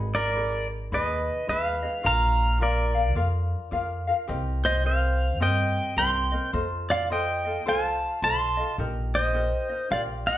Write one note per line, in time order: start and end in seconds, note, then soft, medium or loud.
0.00 0.94 G#1 loud
0.00 0.35 D#4 medium
0.00 0.35 G#4 medium
0.00 0.34 B4 medium
0.00 0.36 D#5 medium
0.15 0.67 A#4 medium
0.15 0.67 D5 loud
0.35 0.91 D#4 medium
0.35 0.92 G#4 medium
0.35 0.91 B4 medium
0.35 0.92 D#5 medium
0.92 1.28 D#2 medium
0.92 1.47 D#4 medium
0.92 1.48 G#4 medium
0.92 1.46 B4 medium
0.92 1.45 B4 medium
0.92 1.48 D#5 medium
0.92 1.49 D#5 medium
1.48 1.85 D#2 medium
1.48 1.83 D#4 medium
1.48 1.82 G#4 medium
1.48 1.83 B4 medium
1.48 2.01 B4 medium
1.48 1.81 D#5 medium
1.48 2.06 F5 medium
1.82 2.03 D#4 soft
1.82 2.03 G#4 soft
1.82 2.04 D#5 medium
2.03 3.16 A#1 loud
2.03 2.59 F4 medium
2.03 2.60 A#4 medium
2.03 2.58 D5 medium
2.03 2.60 F5 medium
2.03 2.58 F5 medium
2.03 2.63 A#5 loud
2.59 2.95 F4 medium
2.59 2.94 A#4 medium
2.59 3.13 A#4 medium
2.59 2.95 D5 medium
2.59 3.14 D5 medium
2.59 2.93 F5 medium
2.95 3.15 F4 soft
2.95 3.15 A#4 soft
2.95 3.16 F5 soft
3.15 3.53 F2 medium
3.15 3.71 F4 medium
3.15 3.72 A#4 medium
3.15 3.70 D5 medium
3.15 3.72 F5 medium
3.71 4.09 F2 medium
3.71 4.07 F4 medium
3.71 4.07 A#4 medium
3.71 4.07 D5 medium
3.71 4.06 F5 medium
4.07 4.28 F4 soft
4.07 4.27 A#4 soft
4.07 4.28 F5 medium
4.28 5.41 C2 loud
4.28 4.84 C4 medium
4.28 4.83 G4 medium
4.28 4.84 A#4 medium
4.28 4.86 D#5 medium
4.65 4.84 C5 medium
4.65 4.86 D#5 medium
4.84 5.40 C4 medium
4.84 5.39 G4 medium
4.84 5.40 A#4 medium
4.84 5.38 C5 medium
4.84 5.41 D#5 medium
4.84 5.42 F5 medium
5.40 5.77 G2 medium
5.40 5.97 C4 medium
5.40 5.95 G4 medium
5.40 5.97 A#4 medium
5.40 5.98 D#5 medium
5.40 5.94 D#5 medium
5.40 5.98 G5 medium
5.96 6.33 C2 medium
5.96 6.32 C4 medium
5.96 6.32 G4 medium
5.96 6.32 A#4 medium
5.96 6.31 D#5 medium
5.96 6.50 G5 medium
5.96 6.50 C6 medium
6.32 6.53 C4 soft
6.32 6.53 A#4 soft
6.32 6.53 D#5 medium
6.53 7.67 F2 loud
6.53 7.09 F4 medium
6.53 7.10 A4 medium
6.53 7.09 C5 medium
6.53 7.11 D#5 medium
6.90 7.09 D5 medium
6.90 7.12 F5 medium
7.10 7.45 F4 medium
7.10 7.44 A4 medium
7.10 7.45 C5 medium
7.10 7.43 D#5 medium
7.10 7.63 D#5 medium
7.10 7.68 G5 medium
7.45 7.65 F4 soft
7.45 7.65 A4 soft
7.45 7.66 D#5 soft
7.66 8.03 C2 medium
7.66 8.22 F4 medium
7.66 8.22 A4 medium
7.66 8.21 C5 medium
7.66 8.22 D#5 medium
7.66 8.20 F5 medium
7.66 8.23 A5 medium
8.22 8.59 B1 medium
8.22 8.58 F4 medium
8.22 8.57 A4 medium
8.22 8.57 C5 medium
8.22 8.56 D#5 medium
8.22 8.76 A5 medium
8.22 8.75 C6 medium
8.57 8.79 F4 soft
8.57 8.79 A4 soft
8.57 8.78 D#5 medium
8.78 9.51 A#1 loud
8.78 9.33 D#4 medium
8.78 9.33 G4 medium
8.78 9.35 A#4 medium
8.78 9.35 D#5 medium
9.15 9.88 C5 medium
9.15 9.91 D#5 medium
9.33 9.70 D#4 medium
9.33 9.69 G4 medium
9.33 9.69 A#4 medium
9.33 9.68 D#5 medium
9.69 9.90 D#4 soft
9.69 9.90 A#4 soft
9.69 9.91 D#5 soft
9.90 10.27 A#1 medium
9.90 10.38 F4 medium
9.90 10.38 G4 medium
9.90 10.38 A#4 medium
9.90 10.38 D5 medium
9.90 10.02 D5 medium
9.90 10.01 F5 medium
10.27 10.38 D#5 medium
10.27 10.38 G5 medium